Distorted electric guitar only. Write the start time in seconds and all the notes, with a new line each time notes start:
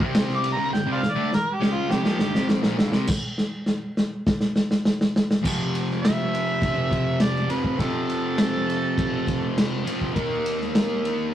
Already playing: C3
0.00 G3 C4
0.57 C#3 G#3
0.71 G2 D3
0.86 C3 G3
1.03 muted distorted electric guitar stroke
1.15 D3 A3
1.31 muted distorted electric guitar stroke
1.60 C#3 G#3 C#4
1.89 F2 C3
2.04 A#2 F3
2.19 G2 D3
2.35 F2 C3 F3
2.63 A#2 F3
2.77 G2 D3
2.92 C3 G3
5.42 F2 C3 F3
7.47 F2 C3 F3
7.76 F2 C3 F3
9.84 F2 C3 F3
10.13 D#3 A#3
10.17 D#4